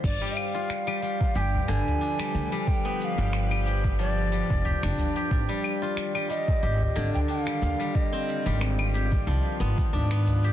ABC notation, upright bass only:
X:1
M:4/4
L:1/16
Q:"Swing 16ths" 1/4=91
K:none
V:1 name="Upright bass" clef=bass
G,,, z6 z G,,, z G,,, z3 D,, z | z3 G,,,6- G,,, z F,,, z F,,, G,,, z | _A,,, z6 z A,,, z A,,, z3 _E,, z | z3 _A,,,4- A,,, C,, z A,,, z _A,,3 z |]